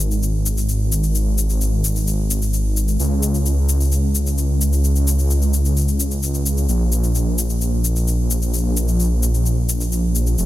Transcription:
Already playing: detuned saw bass G#1
0.11 shaker
0.23 shaker
0.46 shaker
0.57 shaker
0.69 shaker
0.92 shaker
1.03 shaker
1.15 shaker
1.38 shaker
1.50 shaker
1.61 shaker
1.84 shaker
1.96 shaker
2.07 shaker
2.31 shaker
2.42 shaker
2.54 shaker
2.77 shaker
2.88 shaker
3.00 detuned saw bass C#2, shaker
3.23 shaker
3.34 shaker
3.46 shaker
3.69 shaker
3.80 shaker
3.92 shaker
4.15 shaker
4.27 shaker
4.38 shaker
4.61 shaker
4.73 shaker
4.84 shaker
4.96 shaker
5.07 shaker
5.19 shaker
5.31 shaker
5.42 shaker
5.54 shaker
5.65 shaker
5.77 shaker
5.88 shaker
6.00 shaker
6.11 shaker
6.23 shaker
6.34 shaker
6.46 shaker
6.57 shaker
6.69 detuned saw bass A#1, shaker
6.92 shaker
7.04 shaker
7.15 shaker
7.38 shaker
7.50 shaker
7.61 shaker
7.84 shaker
7.96 shaker
8.08 shaker
8.31 shaker
8.42 shaker
8.54 shaker
8.77 shaker
8.88 shaker
9.00 shaker
9.23 shaker
9.34 shaker
9.46 shaker
9.69 shaker
9.81 shaker
9.92 shaker
10.15 shaker
10.27 shaker
10.38 detuned saw bass F1, shaker

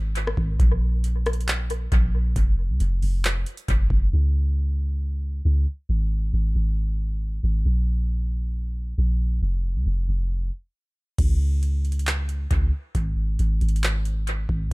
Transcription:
Already playing: 808-style bass G#1
0.16 closed hi-hat
0.27 cross-stick
0.37 808-style bass G#1, kick
0.60 808-style bass A#1, kick, closed hi-hat
1.04 closed hi-hat
1.26 cross-stick, closed hi-hat
1.33 closed hi-hat
1.41 closed hi-hat
1.48 clap, closed hi-hat
1.70 closed hi-hat
1.92 808-style bass A#1, kick, closed hi-hat
2.36 808-style bass F1, kick, closed hi-hat
2.69 808-style bass C2
2.80 808-style bass F1, closed hi-hat
3.02 808-style bass F1, open hi-hat
3.25 clap, closed hi-hat
3.46 closed hi-hat
3.57 closed hi-hat
3.68 808-style bass F1, kick, closed hi-hat
3.90 808-style bass F1, kick
4.13 808-style bass C#2
5.45 808-style bass C#2
5.89 808-style bass G#1
6.33 808-style bass G#1
6.55 808-style bass G#1
7.43 808-style bass G#1
7.65 808-style bass A#1
8.98 808-style bass A#1
9.42 808-style bass F1
9.75 808-style bass C2
9.86 808-style bass F1
10.08 808-style bass F1
11.18 808-style bass C#2, kick, closed hi-hat, crash
11.63 closed hi-hat
11.85 closed hi-hat
11.92 closed hi-hat
11.99 closed hi-hat
12.07 clap, closed hi-hat
12.29 closed hi-hat
12.51 808-style bass C#2, kick, closed hi-hat
12.95 808-style bass G#1, kick, closed hi-hat
13.39 808-style bass G#1, closed hi-hat
13.61 808-style bass G#1, closed hi-hat
13.69 closed hi-hat
13.76 closed hi-hat
13.83 clap, closed hi-hat
14.05 closed hi-hat
14.27 closed hi-hat
14.49 808-style bass G#1, kick

